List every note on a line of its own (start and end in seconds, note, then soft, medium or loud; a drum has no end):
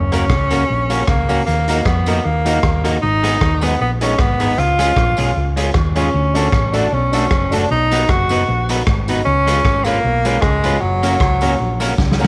0.00 0.31 F#1 loud
0.00 1.04 C#4 loud
0.12 0.24 A#3 medium
0.12 0.25 C#4 medium
0.12 0.24 C#4 medium
0.12 0.24 F#4 medium
0.12 0.26 F#4 medium
0.12 0.26 A#4 medium
0.12 0.24 A#4 medium
0.12 0.26 C#5 loud
0.12 cross-stick medium
0.12 closed hi-hat medium
0.12 tambourine medium
0.30 0.63 C#2 loud
0.30 kick loud
0.30 cross-stick loud
0.50 0.63 A#3 medium
0.50 0.64 C#4 medium
0.50 0.63 C#4 medium
0.50 0.64 F#4 medium
0.50 0.63 F#4 medium
0.50 0.64 A#4 medium
0.50 0.63 A#4 medium
0.50 0.65 C#5 medium
0.50 closed hi-hat medium
0.50 tambourine medium
0.69 1.02 A#1 medium
0.69 0.73 A#4 soft
0.69 0.73 C#5 soft
0.89 1.02 A#3 medium
0.89 1.03 C#4 loud
0.89 1.02 C#4 medium
0.89 1.03 F#4 medium
0.89 1.02 F#4 medium
0.89 1.03 A#4 medium
0.89 1.02 A#4 medium
0.89 1.03 C#5 loud
0.89 closed hi-hat medium
0.89 tambourine medium
1.07 1.41 C#2 medium
1.07 1.44 A#3 medium
1.07 kick loud
1.07 cross-stick loud
1.28 1.40 A#3 medium
1.28 1.42 C#4 medium
1.28 1.41 C#4 medium
1.28 1.42 F#4 medium
1.28 1.41 F#4 medium
1.28 1.42 A#4 medium
1.28 1.41 A#4 medium
1.28 1.42 C#5 loud
1.28 open hi-hat medium
1.28 tambourine medium
1.46 1.80 D#2 loud
1.46 1.87 A#3 medium
1.46 hi-hat pedal medium
1.67 1.80 A#3 medium
1.67 1.81 D#4 medium
1.67 1.80 D#4 medium
1.67 1.81 F#4 medium
1.67 1.80 F#4 medium
1.67 1.81 A#4 medium
1.67 1.80 A#4 medium
1.67 1.81 D#5 loud
1.67 closed hi-hat medium
1.67 tambourine medium
1.85 2.19 F2 medium
1.85 2.26 B3 medium
1.85 kick loud
1.85 cross-stick loud
2.06 2.19 A#3 medium
2.06 2.20 D#4 loud
2.06 2.19 D#4 medium
2.06 2.20 F#4 medium
2.06 2.19 F#4 medium
2.06 2.20 A#4 medium
2.06 2.19 A#4 medium
2.06 2.20 D#5 loud
2.06 closed hi-hat medium
2.06 tambourine medium
2.24 2.58 D#2 loud
2.24 2.85 A#3 medium
2.24 2.29 A#4 soft
2.24 2.29 D#5 soft
2.45 2.57 A#3 medium
2.45 2.58 D#4 loud
2.45 2.57 D#4 medium
2.45 2.59 F#4 medium
2.45 2.58 F#4 loud
2.45 2.59 A#4 medium
2.45 2.58 A#4 medium
2.45 2.59 D#5 loud
2.45 closed hi-hat medium
2.45 tambourine medium
2.63 2.96 D#2 loud
2.63 kick loud
2.63 cross-stick loud
2.83 2.96 A#3 medium
2.83 2.97 D#4 medium
2.83 2.96 D#4 medium
2.83 2.97 F#4 medium
2.83 2.96 F#4 loud
2.83 2.98 A#4 medium
2.83 2.97 A#4 loud
2.83 2.98 D#5 loud
2.83 closed hi-hat medium
2.83 tambourine medium
3.02 3.36 G#1 loud
3.02 3.65 D#4 loud
3.23 3.35 G#3 medium
3.23 3.35 B3 medium
3.23 3.37 D#4 loud
3.23 3.35 D#4 loud
3.23 3.37 G#4 medium
3.23 3.36 G#4 loud
3.23 3.37 B4 medium
3.23 3.37 D#5 loud
3.23 closed hi-hat medium
3.23 tambourine medium
3.41 3.74 D#2 loud
3.41 kick loud
3.41 cross-stick loud
3.61 3.74 G#3 medium
3.61 3.74 B3 medium
3.61 3.80 B3 medium
3.61 3.75 D#4 medium
3.61 3.74 D#4 medium
3.61 3.75 G#4 medium
3.61 3.74 G#4 medium
3.61 3.76 B4 medium
3.61 3.76 D#5 loud
3.61 closed hi-hat medium
3.61 tambourine medium
3.80 4.13 A#1 medium
3.80 3.90 B3 medium
3.80 3.84 B4 soft
3.80 3.84 D#5 soft
4.01 4.13 G#3 medium
4.01 4.13 B3 medium
4.01 4.22 C#4 medium
4.01 4.14 D#4 medium
4.01 4.13 D#4 medium
4.01 4.14 G#4 medium
4.01 4.13 G#4 medium
4.01 4.15 B4 medium
4.01 4.15 D#5 loud
4.01 closed hi-hat medium
4.01 tambourine medium
4.19 4.52 G#1 medium
4.19 4.60 B3 loud
4.19 kick loud
4.19 cross-stick loud
4.39 4.52 G#3 medium
4.39 4.52 B3 medium
4.39 4.53 D#4 medium
4.39 4.52 D#4 medium
4.39 4.53 G#4 medium
4.39 4.52 G#4 medium
4.39 4.53 B4 medium
4.39 4.54 D#5 medium
4.39 open hi-hat medium
4.39 tambourine medium
4.58 4.91 C#2 medium
4.58 5.49 F4 loud
4.58 hi-hat pedal medium
4.78 4.91 G#3 medium
4.78 4.92 C#4 medium
4.78 4.91 C#4 medium
4.78 4.92 F4 medium
4.78 4.91 F4 medium
4.78 4.92 G#4 medium
4.78 4.91 G#4 medium
4.78 4.92 C#5 loud
4.78 closed hi-hat medium
4.78 tambourine medium
4.96 5.15 A#1 medium
4.96 kick loud
4.96 cross-stick loud
5.17 5.33 B1 medium
5.17 5.30 G#3 medium
5.17 5.31 C#4 medium
5.17 5.30 C#4 medium
5.17 5.31 F4 medium
5.17 5.30 F4 medium
5.17 5.31 G#4 medium
5.17 5.30 G#4 medium
5.17 5.31 C#5 loud
5.17 closed hi-hat medium
5.17 tambourine medium
5.36 5.69 C#2 medium
5.36 5.40 G#4 soft
5.36 5.40 C#5 soft
5.56 5.69 G#3 medium
5.56 5.70 C#4 medium
5.56 5.69 C#4 medium
5.56 5.70 F4 medium
5.56 5.69 F4 medium
5.56 5.70 G#4 medium
5.56 5.69 G#4 medium
5.56 5.70 C#5 loud
5.56 closed hi-hat medium
5.56 tambourine medium
5.74 6.08 D#2 medium
5.74 kick loud
5.74 cross-stick loud
5.95 6.08 G#3 medium
5.95 6.09 C#4 medium
5.95 6.08 C#4 medium
5.95 6.77 C#4 medium
5.95 6.09 F4 medium
5.95 6.08 F4 medium
5.95 6.09 G#4 medium
5.95 6.08 G#4 medium
5.95 6.09 C#5 medium
5.95 closed hi-hat medium
5.95 tambourine medium
6.14 6.47 D2 loud
6.34 6.47 A3 medium
6.34 6.48 D4 medium
6.34 6.47 D4 medium
6.34 6.48 F#4 medium
6.34 6.47 F#4 medium
6.34 6.48 A4 medium
6.34 6.47 A4 medium
6.34 6.48 D5 medium
6.34 closed hi-hat medium
6.34 tambourine medium
6.52 6.86 A1 medium
6.52 kick loud
6.52 cross-stick loud
6.73 6.86 A3 medium
6.73 6.86 D4 medium
6.73 6.95 D4 medium
6.73 6.87 F#4 medium
6.73 6.86 F#4 loud
6.73 6.87 A4 medium
6.73 6.86 A4 medium
6.73 6.87 D5 loud
6.73 closed hi-hat medium
6.73 tambourine medium
6.93 7.25 B1 loud
6.93 7.56 C#4 medium
7.12 7.25 A3 medium
7.12 7.26 D4 medium
7.12 7.25 D4 medium
7.12 7.26 F#4 medium
7.12 7.25 F#4 medium
7.12 7.26 A4 medium
7.12 7.25 A4 loud
7.12 7.26 D5 loud
7.12 closed hi-hat medium
7.12 tambourine medium
7.31 7.64 F#1 loud
7.31 kick loud
7.31 cross-stick loud
7.51 7.64 A3 medium
7.51 7.65 D4 medium
7.51 7.64 D4 medium
7.51 7.71 D4 medium
7.51 7.65 F#4 medium
7.51 7.64 F#4 loud
7.51 7.65 A4 medium
7.51 7.65 D5 loud
7.51 closed hi-hat medium
7.51 tambourine medium
7.71 8.03 B1 loud
7.71 8.12 D#4 loud
7.91 8.03 B3 medium
7.91 8.04 D#4 medium
7.91 8.03 D#4 medium
7.91 8.04 F#4 medium
7.91 8.04 B4 medium
7.91 8.05 D#5 loud
7.91 closed hi-hat medium
7.91 tambourine medium
8.09 8.42 F#1 medium
8.09 8.70 F#4 loud
8.09 kick loud
8.09 cross-stick loud
8.29 8.42 B3 medium
8.29 8.43 D#4 medium
8.29 8.42 D#4 medium
8.29 8.43 F#4 medium
8.29 8.42 F#4 medium
8.29 8.43 B4 medium
8.29 8.42 B4 loud
8.29 8.44 D#5 loud
8.29 closed hi-hat medium
8.29 tambourine medium
8.48 8.81 A#1 medium
8.48 8.52 B4 soft
8.48 8.52 D#5 soft
8.69 8.81 B3 medium
8.69 8.82 D#4 loud
8.69 8.81 D#4 medium
8.69 8.82 F#4 medium
8.69 8.81 F#4 medium
8.69 8.82 B4 medium
8.69 8.81 B4 medium
8.69 8.83 D#5 medium
8.69 closed hi-hat medium
8.69 tambourine medium
8.87 9.20 G#1 loud
8.87 kick loud
8.87 cross-stick loud
9.08 9.20 B3 loud
9.08 9.21 D#4 medium
9.08 9.20 D#4 medium
9.08 9.21 F#4 medium
9.08 9.20 F#4 medium
9.08 9.21 B4 medium
9.08 9.21 B4 loud
9.08 9.22 D#5 loud
9.08 closed hi-hat medium
9.08 tambourine medium
9.25 9.59 C#2 loud
9.25 9.86 C#4 loud
9.47 9.58 G#3 loud
9.47 9.59 C#4 loud
9.47 9.60 F4 medium
9.47 9.59 F4 loud
9.47 9.60 G#4 medium
9.47 9.60 B4 medium
9.47 9.59 B4 loud
9.47 9.61 C#5 loud
9.47 closed hi-hat medium
9.47 tambourine medium
9.65 9.98 G#1 medium
9.65 kick loud
9.65 cross-stick loud
9.84 9.98 G#3 medium
9.84 10.43 A#3 loud
9.84 9.98 C#4 medium
9.84 9.99 F4 medium
9.84 9.98 F4 medium
9.84 9.99 G#4 medium
9.84 9.99 B4 medium
9.84 9.98 B4 medium
9.84 9.99 C#5 loud
9.84 closed hi-hat medium
9.84 tambourine medium
10.04 10.37 B1 loud
10.25 10.37 G#3 medium
10.25 10.37 C#4 medium
10.25 10.38 F4 medium
10.25 10.37 F4 medium
10.25 10.38 G#4 medium
10.25 10.38 B4 medium
10.25 10.37 B4 medium
10.25 10.39 C#5 loud
10.25 closed hi-hat medium
10.25 tambourine medium
10.41 10.76 C#2 medium
10.41 10.82 G#3 loud
10.41 kick loud
10.41 cross-stick loud
10.64 10.75 G#3 medium
10.64 10.76 C#4 medium
10.64 10.77 F4 medium
10.64 10.76 F4 medium
10.64 10.77 G#4 medium
10.64 10.77 B4 medium
10.64 10.76 B4 loud
10.64 10.78 C#5 loud
10.64 closed hi-hat medium
10.64 tambourine medium
10.80 11.15 F#1 loud
10.80 11.98 F#3 loud
11.03 11.14 A#3 medium
11.03 11.16 C#4 medium
11.03 11.15 C#4 medium
11.03 11.16 F#4 medium
11.03 11.15 F#4 medium
11.03 11.16 A#4 medium
11.03 11.15 A#4 loud
11.03 11.16 C#5 loud
11.03 closed hi-hat medium
11.03 tambourine medium
11.20 11.54 C#2 loud
11.20 kick loud
11.20 cross-stick loud
11.41 11.53 A#3 medium
11.41 11.55 C#4 loud
11.41 11.54 C#4 medium
11.41 11.55 F#4 medium
11.41 11.54 F#4 medium
11.41 11.55 A#4 medium
11.41 11.54 A#4 loud
11.41 11.55 C#5 loud
11.41 closed hi-hat medium
11.41 tambourine medium
11.59 11.93 A#1 medium
11.59 11.64 A#4 soft
11.59 11.64 C#5 soft
11.80 11.92 A#3 medium
11.80 11.93 C#4 medium
11.80 11.93 F#4 medium
11.80 11.92 F#4 medium
11.80 11.94 A#4 medium
11.80 11.93 A#4 loud
11.80 11.94 C#5 loud
11.80 closed hi-hat medium
11.80 tambourine medium
11.98 12.27 C#2 medium
11.98 kick loud
11.98 snare medium
12.12 snare medium
12.19 12.27 A#3 medium
12.19 12.27 C#4 medium
12.19 12.27 F#4 medium
12.19 12.27 A#4 medium
12.19 12.27 C#5 loud
12.19 tambourine medium